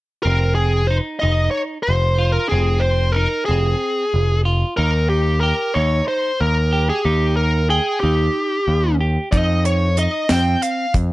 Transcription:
0.23 0.99 F1 medium
0.23 0.80 C4 medium
0.23 0.55 A#4 medium
0.55 0.86 G#4 medium
0.87 1.18 D#4 medium
0.87 0.96 C5 medium
1.19 1.47 F1 medium
1.19 1.77 D#4 medium
1.19 1.51 D#5 medium
1.51 1.60 C#5 medium
1.83 2.30 C5 medium
1.88 2.37 F1 medium
2.19 2.47 F4 medium
2.32 2.49 A#4 medium
2.49 3.25 F1 medium
2.49 3.07 C4 medium
2.49 2.80 G#4 medium
2.80 3.15 C5 medium
3.12 3.44 A#4 medium
3.16 3.44 D#4 medium
3.45 3.74 F1 medium
3.45 4.04 C4 medium
3.45 4.40 G#4 medium
4.14 4.63 F1 medium
4.45 4.73 F4 medium
4.77 5.52 D#2 medium
4.77 5.34 D#4 medium
4.77 5.09 A#4 medium
5.09 5.40 G4 medium
5.41 5.71 G4 medium
5.41 5.75 A#4 medium
5.74 6.00 D#2 medium
5.74 6.31 D#4 medium
5.74 6.05 C#5 medium
6.08 6.41 C5 medium
6.41 6.90 D#2 medium
6.41 6.89 A#4 medium
6.73 7.00 G4 medium
6.89 7.05 G#4 medium
7.05 7.79 D#2 medium
7.05 7.61 D#4 medium
7.05 7.36 G4 medium
7.37 7.67 A#4 medium
7.70 8.00 G#4 medium
7.70 7.98 G5 medium
8.00 8.28 D#2 medium
8.00 8.58 D#4 medium
8.00 8.95 G4 medium
8.68 9.17 D#2 medium
9.01 9.28 G4 medium
9.32 10.06 F2 medium
9.32 9.88 D#4 medium
9.32 9.62 D#5 medium
9.32 kick medium
9.32 closed hi-hat medium
9.65 9.95 C#5 medium
9.65 closed hi-hat soft
9.97 10.25 D#4 medium
9.97 10.31 D#5 medium
9.97 closed hi-hat soft
10.29 10.55 F2 medium
10.29 10.85 C4 medium
10.29 10.61 G5 medium
10.29 snare medium
10.29 closed hi-hat medium
10.62 10.93 F5 medium
10.62 closed hi-hat medium
10.94 11.13 F2 medium
10.94 kick medium
10.94 closed hi-hat medium

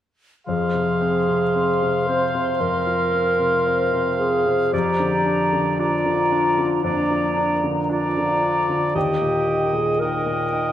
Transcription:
0.46 2.57 F2 soft
0.46 4.36 F3 soft
0.46 2.08 G#4 medium
0.46 4.69 F5 soft
0.46 4.47 C6 soft
0.74 1.16 C3 soft
0.83 2.94 C4 soft
1.01 1.43 C4 soft
1.18 3.30 G#4 soft
1.28 1.70 C3 soft
1.54 1.97 C4 soft
1.54 2.23 C5 soft
1.82 2.24 C3 soft
1.90 4.01 F5 soft
2.07 2.50 C4 soft
2.07 2.62 C5 soft
2.24 3.65 C5 soft
2.35 2.76 C3 soft
2.60 4.69 F2 soft
2.60 4.78 G#3 soft
2.60 4.18 A#4 medium
2.87 3.29 F3 soft
2.95 4.77 C4 soft
3.13 3.56 C4 soft
3.31 4.78 G#4 soft
3.39 3.82 C3 soft
3.66 4.09 C4 soft
3.66 4.37 C5 soft
3.93 4.36 C3 soft
4.02 6.13 F5 soft
4.18 4.63 C4 soft
4.18 4.74 G#4 medium
4.38 4.78 C5 soft
4.46 4.73 C3 soft
4.73 6.80 F2 soft
4.73 8.64 F3 soft
4.73 5.81 G4 medium
4.73 5.77 D5 soft
4.73 5.77 A#5 soft
5.00 5.42 D3 soft
5.10 7.18 D4 soft
5.26 5.68 D4 soft
5.44 7.53 A#4 soft
5.53 5.95 D3 soft
5.79 6.21 D4 soft
5.79 6.84 F4 medium
5.79 6.48 D5 soft
5.79 6.68 D5 soft
5.79 6.82 A#5 soft
6.06 6.48 D3 soft
6.14 8.24 F5 soft
6.32 6.74 D4 soft
6.50 7.89 D5 soft
6.58 7.00 D3 soft
6.83 8.91 F2 soft
6.83 10.72 A#3 soft
6.83 7.61 D4 soft
6.83 7.61 D5 soft
6.83 7.88 A#5 soft
7.11 7.53 F3 soft
7.20 9.00 D4 soft
7.37 7.79 D4 soft
7.54 9.64 A#4 soft
7.64 8.06 D3 soft
7.89 8.32 D4 soft
7.89 8.97 F4 soft
7.89 8.58 D5 soft
7.89 8.94 A#5 soft
7.93 8.93 D5 soft
8.17 8.59 D3 soft
8.25 9.00 F5 soft
8.42 8.85 D4 soft
8.60 8.99 D5 soft
8.69 8.96 D3 soft
8.94 10.72 D#2 soft
8.94 10.72 D#3 soft
8.94 9.76 G4 medium
8.94 9.98 D#5 soft
8.94 10.00 G5 soft
9.22 9.64 A#2 soft
9.30 10.72 D#4 soft
9.47 9.90 D#4 soft
9.65 10.72 A#4 soft
9.73 10.16 A#2 soft
9.73 10.01 G#4 medium
9.99 10.43 D#4 soft
9.99 10.72 A#4 medium
9.99 10.69 D#5 soft
9.99 10.72 D#5 soft
9.99 10.72 G5 soft
10.26 10.68 A#2 soft
10.35 10.72 G5 soft
10.52 10.72 D#4 soft

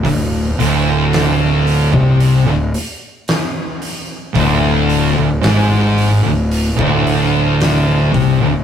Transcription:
0.05 0.55 D1 medium
0.05 0.48 D2 medium
0.05 kick medium
0.05 open hi-hat medium
0.58 1.89 D1 loud
0.58 1.92 D2 medium
0.58 open hi-hat medium
1.13 snare loud
1.13 open hi-hat medium
1.67 open hi-hat medium
1.93 2.44 C2 medium
1.93 2.46 C3 medium
1.93 kick loud
2.20 open hi-hat medium
2.46 2.71 D1 medium
2.46 2.75 D2 medium
2.74 open hi-hat medium
3.28 snare loud
3.28 open hi-hat medium
3.82 open hi-hat medium
4.35 5.13 D1 medium
4.35 5.16 D2 medium
4.35 kick loud
4.35 open hi-hat medium
4.89 open hi-hat medium
5.18 5.43 D1 medium
5.18 5.44 D2 medium
5.43 6.21 G#1 loud
5.43 6.24 G#2 loud
5.43 snare loud
5.43 open hi-hat medium
5.98 open hi-hat medium
6.26 6.76 D1 medium
6.26 6.69 D2 medium
6.51 open hi-hat medium
6.76 8.10 D1 loud
6.76 8.11 D2 medium
6.76 kick loud
6.81 8.13 D2 loud
7.07 open hi-hat medium
7.61 snare loud
7.61 open hi-hat medium
8.14 8.40 C2 loud
8.14 8.40 C3 loud
8.14 kick medium
8.14 open hi-hat medium
8.42 8.64 D1 medium
8.42 8.64 D2 medium

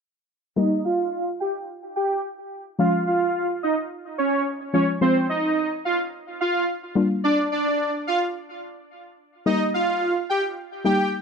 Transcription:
0.56 2.75 G3 medium
0.56 2.75 A#3 medium
0.56 2.75 D#4 medium
0.56 0.81 D#4 medium
0.56 2.75 G4 medium
0.56 0.81 D#5 medium
0.85 1.24 F4 medium
0.85 1.24 F5 medium
1.40 1.53 G4 medium
1.40 1.52 G5 medium
1.96 2.20 G4 medium
1.96 2.20 G5 medium
2.79 4.70 F3 medium
2.79 4.70 G#3 medium
2.79 4.70 C#4 medium
2.79 4.70 F4 medium
2.79 3.03 F4 medium
2.79 3.03 F5 loud
3.07 3.47 F4 medium
3.07 3.46 F5 medium
3.63 3.75 D#4 medium
3.63 3.75 D#5 medium
4.18 4.42 C#4 medium
4.18 4.42 C#5 medium
4.73 5.00 F3 soft
4.73 5.00 G#3 soft
4.73 5.02 C#4 soft
4.73 4.86 C#4 medium
4.73 5.01 F4 medium
4.73 4.86 C#5 medium
5.01 6.92 F3 medium
5.01 6.92 G#3 medium
5.01 6.92 C4 medium
5.01 5.26 C4 medium
5.01 6.92 F4 medium
5.01 5.25 C5 loud
5.29 5.69 D#4 medium
5.29 5.68 D#5 medium
5.85 5.97 F4 medium
5.85 5.97 F5 medium
6.41 6.65 F4 medium
6.41 6.64 F5 medium
6.95 9.14 G3 medium
6.95 9.14 A#3 medium
6.95 9.14 D4 medium
6.95 9.14 F4 medium
7.24 7.48 D4 medium
7.24 7.47 D5 loud
7.52 7.91 D4 medium
7.52 7.91 D5 medium
8.07 8.20 F4 medium
8.07 8.19 F5 medium
9.46 10.07 G3 medium
9.46 10.07 A#3 medium
9.46 10.07 D#4 medium
9.46 9.70 D#4 medium
9.46 10.07 G4 medium
9.46 9.70 D#5 medium
9.74 10.13 F4 medium
9.74 10.13 F5 medium
10.30 10.42 G4 medium
10.30 10.41 G5 medium
10.85 11.22 G3 medium
10.85 11.22 A#3 medium
10.85 11.22 D#4 medium
10.85 11.22 G4 medium
10.85 11.09 G4 medium
10.85 11.09 G5 medium

